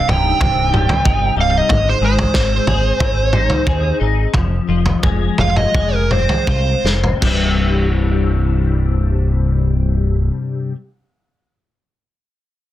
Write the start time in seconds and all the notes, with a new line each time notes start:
Already playing: C2 G2 C3 G3 F5
0.08 C1 D#4 G5, floor tom, mid tom
0.40 C1 C3, kick, floor tom
0.73 G3, mid tom
0.89 floor tom
1.05 G1 D#4, kick
1.36 C1 G3
1.41 F5
1.58 D#5
1.69 G#1 G#2, kick, floor tom
1.89 C5
2.01 G#1 G#3
2.05 C5
2.19 floor tom
2.34 G#1 C4, kick, snare
2.67 G#1 G#4, floor tom, mid tom
3.00 G#1 C4, kick, floor tom
3.33 D#4, mid tom
3.50 floor tom
3.67 D#2 G#4, kick
4.00 G#1 D#4
4.34 F1 F2, kick, floor tom
4.68 F1 F3
4.86 floor tom
5.03 F1 G#3, kick, mid tom
5.38 F1 F4 F5, floor tom, mid tom
5.56 D#5, mid tom
5.74 F1 G#3, kick, floor tom
5.94 A#4
6.11 C4 C5, mid tom
6.29 floor tom
6.47 C2 F4 C5, kick
6.84 F1 C4, snare
7.04 floor tom
7.21 C1 C2 G2 C3 G3, kick, crash
7.25 E4